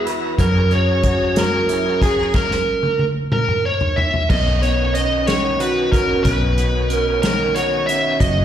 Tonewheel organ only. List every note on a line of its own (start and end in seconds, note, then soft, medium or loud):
0.00 0.35 E3 medium
0.00 0.35 E4 medium
0.00 0.35 F#4 medium
0.00 2.30 A#5 medium
0.39 2.32 F#3 medium
0.39 2.32 C#4 medium
0.39 2.32 G#4 medium
4.30 8.17 D#3 medium
4.30 8.17 B3 medium
4.30 8.45 C#4 medium
8.21 8.45 A#2 medium
8.21 8.45 F#3 medium